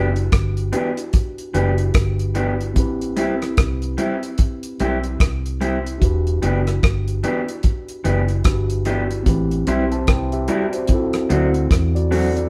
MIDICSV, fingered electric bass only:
0, 0, Header, 1, 2, 480
1, 0, Start_track
1, 0, Key_signature, 1, "minor"
1, 0, Tempo, 813008
1, 1630, Time_signature, 4, 2, 24, 8
1, 7374, End_track
2, 0, Start_track
2, 0, Title_t, "Fingered electric bass"
2, 0, Program_c, 0, 33
2, 0, Note_on_c, 0, 30, 86
2, 178, Note_off_c, 0, 30, 0
2, 192, Note_on_c, 0, 31, 89
2, 419, Note_off_c, 0, 31, 0
2, 911, Note_on_c, 0, 30, 83
2, 1138, Note_off_c, 0, 30, 0
2, 1149, Note_on_c, 0, 31, 90
2, 1634, Note_off_c, 0, 31, 0
2, 1634, Note_on_c, 0, 33, 94
2, 1874, Note_off_c, 0, 33, 0
2, 1874, Note_on_c, 0, 35, 82
2, 2099, Note_off_c, 0, 35, 0
2, 2113, Note_on_c, 0, 36, 86
2, 2339, Note_off_c, 0, 36, 0
2, 2836, Note_on_c, 0, 35, 79
2, 3061, Note_off_c, 0, 35, 0
2, 3073, Note_on_c, 0, 36, 76
2, 3528, Note_off_c, 0, 36, 0
2, 3556, Note_on_c, 0, 28, 92
2, 3781, Note_off_c, 0, 28, 0
2, 3793, Note_on_c, 0, 30, 85
2, 4019, Note_off_c, 0, 30, 0
2, 4035, Note_on_c, 0, 31, 86
2, 4261, Note_off_c, 0, 31, 0
2, 4751, Note_on_c, 0, 30, 85
2, 4979, Note_off_c, 0, 30, 0
2, 4992, Note_on_c, 0, 31, 88
2, 5448, Note_off_c, 0, 31, 0
2, 5474, Note_on_c, 0, 33, 101
2, 5700, Note_off_c, 0, 33, 0
2, 5711, Note_on_c, 0, 35, 76
2, 5939, Note_off_c, 0, 35, 0
2, 5956, Note_on_c, 0, 36, 88
2, 6181, Note_off_c, 0, 36, 0
2, 6673, Note_on_c, 0, 38, 81
2, 6900, Note_off_c, 0, 38, 0
2, 6914, Note_on_c, 0, 40, 78
2, 7369, Note_off_c, 0, 40, 0
2, 7374, End_track
0, 0, End_of_file